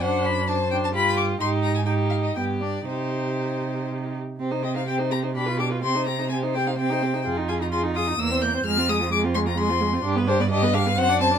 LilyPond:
<<
  \new Staff \with { instrumentName = "Violin" } { \time 3/4 \key c \minor \tempo 4 = 129 fis''8 b''8 a''8 g''16 a''16 b''8 d'''8 | c'''8 bes''16 aes''16 g''8 f''16 ees''16 g''8 d''8 | c''2 r4 | r8 ees''16 f''16 g''8 bes''8 b''8 d'''8 |
c'''8 bes''8 aes''8 g''16 f''16 g''4 | r8 aes''16 bes''16 c'''8 ees'''8 e'''8 g'''8 | f'''8 ees'''8 d'''8 c'''16 bes''16 c'''4 | r8 c''16 d''16 ees''8 f''8 fis''8 a''8 | }
  \new Staff \with { instrumentName = "Violin" } { \time 3/4 \key c \minor c''4 c''4 g'4 | g'4 g'4 g'4 | g'2~ g'8 r8 | g'16 c''16 g'16 c''16 g'16 c''16 g'16 c''16 g'16 b'16 g'16 b'16 |
g'16 c''16 g'16 c''16 g'16 c''16 g'16 c''16 g'16 c''16 g'16 c''16 | aes'16 f'16 aes'16 f'16 aes'16 f'16 aes'16 f'16 bes'16 c''16 bes'16 c''16 | aes'16 f'16 aes'16 f'16 aes'16 f'16 aes'16 f'16 aes'16 f'16 aes'16 f'16 | g'16 b'16 g'16 b'16 g'16 b'16 g'16 b'16 c''16 d''16 c''16 d''16 | }
  \new Staff \with { instrumentName = "Viola" } { \time 3/4 \key c \minor d'4 d'8 d'8 f'4 | ees'4 ees'4 b8 d'8 | ees'2~ ees'8 r8 | c'16 ees'16 c'16 ees'16 c'16 ees'16 c'16 ees'16 d'16 f'16 d'16 f'16 |
c'16 ees'16 c'16 ees'16 c'16 ees'16 c'16 ees'16 c'16 ees'16 c'16 ees'16 | f'16 ees'16 f'16 ees'16 f'16 ees'16 f'16 ees'16 bes16 c'16 bes16 c'16 | aes16 c'16 aes16 c'16 aes16 c'16 aes16 c'16 aes16 c'16 aes16 c'16 | d'16 b16 d'16 b16 d'16 b16 d'16 b16 c'16 d'16 c'16 d'16 | }
  \new Staff \with { instrumentName = "Cello" } { \clef bass \time 3/4 \key c \minor fis,2 g,4 | aes,2 g,4 | c2~ c8 r8 | c2 b,4 |
c2. | f,2 e,4 | f,2. | g,2 fis,4 | }
>>